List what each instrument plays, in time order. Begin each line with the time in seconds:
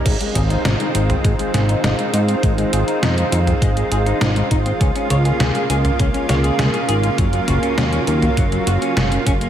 0.06 analog synth bass G#1, analog synth pad D#3 G#3 C4 F4, clean electric guitar G#3, kick, closed hi-hat, crash
0.21 clean electric guitar G#3, closed hi-hat
0.35 analog synth bass G#1, clean electric guitar G#4, closed hi-hat, mid tom
0.50 clean electric guitar D#4, closed hi-hat
0.65 analog synth bass G#1, clean electric guitar D#4, snare, closed hi-hat
0.80 clean electric guitar D#4, closed hi-hat
0.95 analog synth bass G#1, clean electric guitar D#4, closed hi-hat
1.10 clean electric guitar C4, closed hi-hat, mid tom
1.24 analog synth bass G#1, clean electric guitar G#3, kick, closed hi-hat
1.39 clean electric guitar G#3, closed hi-hat
1.54 analog synth bass G#1, clean electric guitar G#4, snare, closed hi-hat
1.69 clean electric guitar D#4, closed hi-hat
1.84 analog synth bass G#1, clean electric guitar D#4, snare, closed hi-hat
1.99 clean electric guitar D#4, closed hi-hat
2.13 analog synth bass G#2, clean electric guitar D#4, closed hi-hat
2.28 clean electric guitar C4, closed hi-hat
2.43 analog synth bass G#1, clean electric guitar G#3, kick, closed hi-hat
2.58 clean electric guitar G#3, closed hi-hat
2.73 analog synth bass G#1, clean electric guitar G#4, closed hi-hat
2.88 clean electric guitar D#4, closed hi-hat
3.02 analog synth bass F2, clean electric guitar D#4, snare, closed hi-hat
3.17 clean electric guitar D#4, closed hi-hat
3.32 analog synth bass F2, clean electric guitar D#4, closed hi-hat
3.47 clean electric guitar C4, closed hi-hat, mid tom
3.62 analog synth bass G#1, clean electric guitar G#3, kick, closed hi-hat
3.76 clean electric guitar G#3, closed hi-hat
3.91 analog synth bass G#1, clean electric guitar G#4, closed hi-hat
4.06 clean electric guitar D#4, closed hi-hat
4.21 analog synth bass G#1, clean electric guitar D#4, snare, closed hi-hat
4.36 clean electric guitar D#4, closed hi-hat
4.51 analog synth bass G#1, clean electric guitar D#4, kick, closed hi-hat
4.66 clean electric guitar C4, closed hi-hat
4.80 analog synth bass C#2, analog synth pad C#3 A#3, clean electric guitar C#4, kick, closed hi-hat
4.96 clean electric guitar C#4, closed hi-hat
5.10 analog synth bass C#2, clean electric guitar C#5, closed hi-hat, mid tom
5.25 clean electric guitar G#4, closed hi-hat
5.40 analog synth bass C#2, clean electric guitar G#4, snare, closed hi-hat
5.55 clean electric guitar G#4, closed hi-hat
5.70 analog synth bass C#2, clean electric guitar G#4, closed hi-hat
5.84 clean electric guitar F4, closed hi-hat, mid tom
5.99 analog synth bass C#2, clean electric guitar C#4, kick, closed hi-hat
6.14 clean electric guitar C#4, closed hi-hat
6.29 analog synth bass C#2, clean electric guitar C#5, snare, closed hi-hat
6.43 clean electric guitar G#4, closed hi-hat
6.59 analog synth bass C#2, clean electric guitar G#4, snare, closed hi-hat
6.74 clean electric guitar G#4, closed hi-hat
6.88 analog synth bass G#1, clean electric guitar G#4, closed hi-hat
7.03 clean electric guitar F4, closed hi-hat
7.18 analog synth bass F#1, clean electric guitar F#3, analog synth pad F#3, kick, closed hi-hat
7.33 clean electric guitar F#3, closed hi-hat
7.48 analog synth bass F#1, clean electric guitar F#4, closed hi-hat, mid tom
7.63 clean electric guitar C#4, closed hi-hat
7.78 analog synth bass D#2, clean electric guitar C#4, snare, closed hi-hat
7.92 clean electric guitar C#4, closed hi-hat
8.07 analog synth bass D#2, clean electric guitar C#4, closed hi-hat
8.22 clean electric guitar A#3, closed hi-hat, mid tom
8.37 analog synth bass F#1, clean electric guitar F#3, kick, closed hi-hat
8.52 clean electric guitar F#3, closed hi-hat
8.67 analog synth bass F#1, clean electric guitar F#4, closed hi-hat
8.82 clean electric guitar C#4, closed hi-hat
8.97 analog synth bass F#1, clean electric guitar C#4, snare, closed hi-hat
9.12 clean electric guitar C#4, closed hi-hat
9.26 analog synth bass F#1, clean electric guitar C#4, kick, closed hi-hat
9.41 clean electric guitar A#3, closed hi-hat